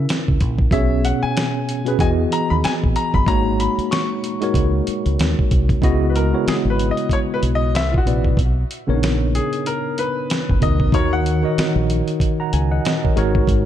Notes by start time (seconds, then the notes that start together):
Already playing: C#3 C#4 E4 A#4 E5
0.09 snare, closed hi-hat
0.28 C#2, kick
0.41 A#1, kick, closed hi-hat
0.59 kick
0.71 B1 B2 B3 C#4 G#4 C#5 E5, kick, closed hi-hat
1.05 F#5, closed hi-hat
1.23 G#5, muted fingered electric bass stroke
1.37 snare, closed hi-hat
1.69 closed hi-hat
1.85 B2 B3 C#4 G#4 B4, closed hi-hat
1.98 E2 E3 B3 F#4 G#4 D#5 G#5, kick, closed hi-hat
2.32 A#5, closed hi-hat
2.50 D#2 B5
2.64 G#5, muted fingered electric bass stroke, snare, closed hi-hat
2.84 A#1, kick
2.96 A#5, closed hi-hat
3.14 G1 B5, kick
3.26 G#1 G#3 A#3 D#4 F#4 C#5 A#5, kick, closed hi-hat
3.60 B5, closed hi-hat
3.78 muted fingered electric bass stroke, closed hi-hat
3.91 C#6, snare, closed hi-hat
4.24 closed hi-hat
4.41 G#3 D#4 F#4 A#4 C#5, closed hi-hat
4.54 C#2, kick, closed hi-hat
4.87 muted fingered electric bass stroke, closed hi-hat
5.06 C#2, closed hi-hat
5.19 D#2, snare, closed hi-hat
5.39 kick
5.51 C2, kick, closed hi-hat
5.69 kick, closed hi-hat
5.82 C#2 C#3 G#3 B3 E4 F#4 D#5, kick, closed hi-hat
6.10 B4
6.16 A#4, closed hi-hat
6.32 C#3 G#3 B3 E4 F#4 C#5
6.47 G#4, muted fingered electric bass stroke, snare, closed hi-hat
6.65 G#1
6.70 B4
6.79 closed hi-hat
6.91 D#5
6.97 closed hi-hat
7.09 C#5, kick, closed hi-hat
7.34 B4
7.43 B1, closed hi-hat
7.55 D#5
7.74 C2 E5, snare, closed hi-hat
7.92 F4, kick
7.98 F#4
8.05 A#1 C3 C4 E4 B4 D5, closed hi-hat
8.24 kick
8.37 B1, kick, closed hi-hat
8.71 closed hi-hat
8.87 A#1 C#3 B3 D4 A#4 C#5
8.95 D#4
9.03 snare, closed hi-hat
9.35 G#4, closed hi-hat
9.53 closed hi-hat
9.66 A#4, closed hi-hat
9.98 B4, closed hi-hat
10.30 snare, closed hi-hat
10.49 F#1, kick
10.61 D2 B2 B3 D#4 A#4 D#5, kick, closed hi-hat
10.80 kick
10.92 D#2 D#3 D#4 F#4 A#4 C#5, kick, closed hi-hat
11.13 F#5
11.26 closed hi-hat
11.42 D#3 D#4 F#4 A#4 D#5
11.58 muted fingered electric bass stroke, snare, closed hi-hat
11.76 A#1
11.90 closed hi-hat
12.08 closed hi-hat
12.20 kick, closed hi-hat
12.40 F#5 A#5
12.53 C#2 G#5, closed hi-hat
12.72 D#5 F#5
12.85 D#5, snare, closed hi-hat
13.04 A#4 C#5, kick
13.16 G#1 G#3 D#4 F#4 A#4 C#5, closed hi-hat
13.35 kick
13.47 G#1, kick, closed hi-hat